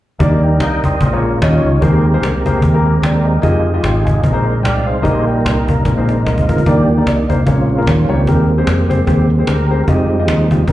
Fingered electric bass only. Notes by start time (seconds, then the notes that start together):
0.20 D#2
0.60 C2
1.00 A#1
1.42 D#2
1.64 C#2
1.82 D#2
2.22 C2
2.62 D#2
3.02 D#2
3.43 F2
3.83 G#1
4.23 A#1
4.63 C2
5.05 A#1
5.45 C2
5.85 A#1
6.26 C2
6.49 D2
6.66 D#2
7.06 C2
7.47 A#1
7.87 D#2
8.09 C#2
8.27 D#2
8.67 F2
9.07 D#2
9.48 D2
9.88 F2
10.28 D#2
10.68 A#1